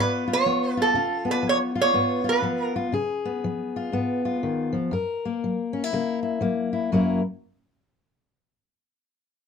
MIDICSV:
0, 0, Header, 1, 3, 480
1, 0, Start_track
1, 0, Key_signature, 6, "major"
1, 0, Tempo, 496278
1, 929, Time_signature, 4, 2, 24, 8
1, 9162, End_track
2, 0, Start_track
2, 0, Title_t, "Resonator guitar played with a steel bar"
2, 0, Program_c, 0, 25
2, 3, Note_on_c, 0, 71, 86
2, 291, Note_off_c, 0, 71, 0
2, 323, Note_on_c, 0, 73, 92
2, 788, Note_off_c, 0, 73, 0
2, 791, Note_on_c, 0, 69, 76
2, 1263, Note_off_c, 0, 69, 0
2, 1267, Note_on_c, 0, 71, 82
2, 1418, Note_off_c, 0, 71, 0
2, 1444, Note_on_c, 0, 73, 82
2, 1520, Note_off_c, 0, 73, 0
2, 1756, Note_on_c, 0, 73, 84
2, 2215, Note_on_c, 0, 71, 80
2, 2226, Note_off_c, 0, 73, 0
2, 2534, Note_off_c, 0, 71, 0
2, 2534, Note_on_c, 0, 70, 80
2, 2649, Note_off_c, 0, 70, 0
2, 9162, End_track
3, 0, Start_track
3, 0, Title_t, "Steel-string acoustic guitar"
3, 0, Program_c, 1, 25
3, 0, Note_on_c, 1, 44, 68
3, 0, Note_on_c, 1, 59, 64
3, 0, Note_on_c, 1, 65, 63
3, 262, Note_off_c, 1, 65, 0
3, 266, Note_on_c, 1, 65, 62
3, 401, Note_off_c, 1, 44, 0
3, 444, Note_on_c, 1, 53, 66
3, 445, Note_off_c, 1, 59, 0
3, 449, Note_on_c, 1, 59, 61
3, 743, Note_off_c, 1, 65, 0
3, 747, Note_on_c, 1, 65, 67
3, 890, Note_off_c, 1, 53, 0
3, 908, Note_on_c, 1, 49, 77
3, 917, Note_off_c, 1, 65, 0
3, 921, Note_on_c, 1, 65, 74
3, 938, Note_off_c, 1, 59, 0
3, 1208, Note_on_c, 1, 59, 55
3, 1362, Note_off_c, 1, 49, 0
3, 1379, Note_on_c, 1, 53, 66
3, 1693, Note_off_c, 1, 65, 0
3, 1697, Note_on_c, 1, 65, 70
3, 1838, Note_off_c, 1, 53, 0
3, 1871, Note_on_c, 1, 44, 71
3, 1874, Note_off_c, 1, 59, 0
3, 1878, Note_on_c, 1, 59, 63
3, 2155, Note_off_c, 1, 65, 0
3, 2166, Note_on_c, 1, 65, 71
3, 2324, Note_off_c, 1, 44, 0
3, 2340, Note_off_c, 1, 59, 0
3, 2341, Note_on_c, 1, 53, 66
3, 2352, Note_on_c, 1, 59, 57
3, 2655, Note_off_c, 1, 65, 0
3, 2667, Note_on_c, 1, 65, 70
3, 2800, Note_off_c, 1, 53, 0
3, 2819, Note_off_c, 1, 59, 0
3, 2827, Note_on_c, 1, 49, 74
3, 2828, Note_off_c, 1, 65, 0
3, 2838, Note_on_c, 1, 68, 70
3, 3147, Note_on_c, 1, 59, 57
3, 3283, Note_off_c, 1, 49, 0
3, 3329, Note_on_c, 1, 53, 65
3, 3638, Note_on_c, 1, 65, 63
3, 3774, Note_off_c, 1, 53, 0
3, 3792, Note_off_c, 1, 59, 0
3, 3794, Note_on_c, 1, 44, 70
3, 3804, Note_on_c, 1, 59, 67
3, 4101, Note_off_c, 1, 65, 0
3, 4112, Note_on_c, 1, 65, 62
3, 4246, Note_off_c, 1, 44, 0
3, 4285, Note_on_c, 1, 51, 62
3, 4571, Note_on_c, 1, 53, 63
3, 4586, Note_off_c, 1, 51, 0
3, 4743, Note_off_c, 1, 68, 0
3, 4746, Note_off_c, 1, 59, 0
3, 4751, Note_off_c, 1, 65, 0
3, 4751, Note_on_c, 1, 42, 77
3, 4762, Note_off_c, 1, 53, 0
3, 4767, Note_on_c, 1, 70, 70
3, 5081, Note_on_c, 1, 58, 54
3, 5205, Note_off_c, 1, 42, 0
3, 5260, Note_on_c, 1, 54, 62
3, 5543, Note_on_c, 1, 61, 59
3, 5645, Note_off_c, 1, 61, 0
3, 5645, Note_on_c, 1, 64, 51
3, 5699, Note_off_c, 1, 54, 0
3, 5728, Note_off_c, 1, 58, 0
3, 5734, Note_on_c, 1, 49, 66
3, 5739, Note_on_c, 1, 58, 65
3, 6011, Note_off_c, 1, 64, 0
3, 6023, Note_on_c, 1, 64, 58
3, 6176, Note_off_c, 1, 49, 0
3, 6194, Note_off_c, 1, 58, 0
3, 6197, Note_on_c, 1, 54, 64
3, 6206, Note_on_c, 1, 58, 59
3, 6496, Note_off_c, 1, 64, 0
3, 6507, Note_on_c, 1, 64, 61
3, 6647, Note_off_c, 1, 54, 0
3, 6667, Note_off_c, 1, 58, 0
3, 6667, Note_off_c, 1, 70, 0
3, 6668, Note_off_c, 1, 64, 0
3, 6691, Note_on_c, 1, 42, 64
3, 6696, Note_on_c, 1, 54, 64
3, 6707, Note_on_c, 1, 58, 62
3, 6714, Note_on_c, 1, 64, 62
3, 6722, Note_on_c, 1, 70, 53
3, 6959, Note_off_c, 1, 42, 0
3, 6961, Note_off_c, 1, 54, 0
3, 6967, Note_off_c, 1, 58, 0
3, 6971, Note_off_c, 1, 64, 0
3, 6973, Note_off_c, 1, 70, 0
3, 9162, End_track
0, 0, End_of_file